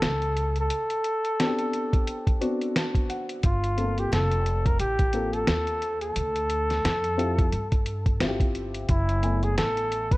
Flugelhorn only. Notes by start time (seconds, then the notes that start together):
Already playing: A4
0.60 A4
3.46 F4
3.99 G4
4.14 A4
4.66 A#4
4.80 G4
5.33 A4
6.02 A4
8.90 E4
9.44 G#4
9.58 A4
10.12 B4